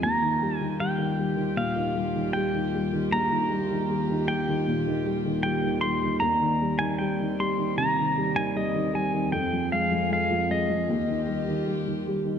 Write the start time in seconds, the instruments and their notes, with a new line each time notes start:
0.02 upright piano D#2, string section D#2 D#3 F4 G4, pedal steel guitar A#5
0.22 upright piano D#3
0.41 upright piano G3
0.57 upright piano D#3, pedal steel guitar G#5
0.80 upright piano G3, pedal steel guitar G5
0.98 upright piano D#3
1.18 upright piano G3
1.36 upright piano D#3
1.56 upright piano A#2, pedal steel guitar F5
1.76 upright piano D#3
1.95 upright piano G3
2.15 upright piano D#3
2.33 upright piano G3, pedal steel guitar G5
2.54 upright piano D#3
2.75 upright piano G3
2.93 upright piano D#3
3.12 upright piano A#1, pedal steel guitar A#5
3.31 upright piano D#3
3.50 upright piano G3
3.70 upright piano D#3
3.90 upright piano G3
4.09 upright piano D#3
4.28 upright piano G3, pedal steel guitar G5
4.49 upright piano D#3
4.67 upright piano A#2
4.87 upright piano D#3
5.06 upright piano G3
5.25 upright piano D#3
5.43 upright piano G3, pedal steel guitar G5
5.63 upright piano D#3
5.81 upright piano G3, pedal steel guitar C6
6.03 upright piano D#3
6.20 upright piano D#2, string section G3 C4, pedal steel guitar A#5
6.41 upright piano D#3
6.61 upright piano G3
6.79 upright piano D#3, pedal steel guitar G#5
6.99 upright piano G3, pedal steel guitar G5
7.20 upright piano D#3
7.39 upright piano G3, pedal steel guitar C6
7.58 upright piano D#3
7.77 upright piano C3, pedal steel guitar A#5
7.98 upright piano D#3
8.17 upright piano G3
8.36 upright piano D#3, pedal steel guitar G#5
8.55 upright piano G3, pedal steel guitar D#5
8.74 upright piano D#3
8.92 upright piano G3, pedal steel guitar G#5
9.13 upright piano D#3
9.32 upright piano F2, string section F2 F3 G#4, pedal steel guitar G5
9.53 upright piano F3
9.72 upright piano G#3, pedal steel guitar F5
9.91 upright piano F3
10.10 upright piano G#3, pedal steel guitar F5
10.31 upright piano F3
10.49 upright piano G#3, pedal steel guitar D#5
10.70 upright piano F3
10.88 string section D#2 D#3 F4 G4, upright piano D#2
11.08 upright piano D#3
11.27 upright piano G3
11.48 upright piano D#3
11.67 upright piano G3
11.87 upright piano D#3
12.07 upright piano G3
12.25 upright piano D#3